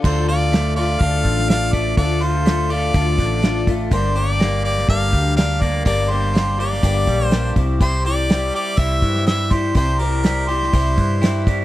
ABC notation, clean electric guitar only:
X:1
M:4/4
L:1/8
Q:1/4=123
K:Dm
V:1 name="Clean electric guitar"
D, F A, F D D, D A, | D, F A, F D D, D A, | G,, G B, G D G, D B, | G,, G B, G D G, D C, |
C, G G, G E E, E G, | C, G G, G E E, E G, |]